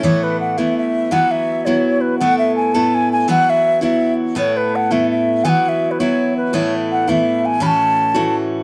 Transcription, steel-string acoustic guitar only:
\new Staff \with { instrumentName = "Steel-string acoustic guitar" } { \time 6/8 \key a \major \tempo 4. = 111 <a, e a b e'>4. <a, e a b e'>4. | <e fis b e' fis'>4. <e fis b e' fis'>4. | <a, a b e' a'>4. <a, a b e' a'>4. | <e fis b e' fis'>4. <e fis b e' fis'>4. |
<a, a b e' a'>4. <a, a b e' a'>4. | <e fis b e' fis'>4. <e fis b e' fis'>4. | <a, e a b e'>4. <a, e a b e'>4. | <a, e a cis' fis'>4. <a, e a cis' fis'>4. | }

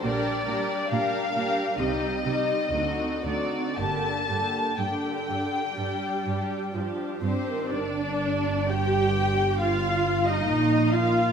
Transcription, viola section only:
\new Staff \with { instrumentName = "Viola section" } { \time 4/4 \key g \minor \tempo 4 = 63 << { <g d'>8 <g d'>8 <g d'>8 <g d'>8 <g c'>8 <g c'>8 <d c'>8 <d c'>8 | <d bes>8 <d bes>8 r2 r8 c'8 | d'4 g'4 f'8. ees'8. f'8 | } \\ { r1 | r4 d4 g4 f8 r16 ees16 | r1 | } >> }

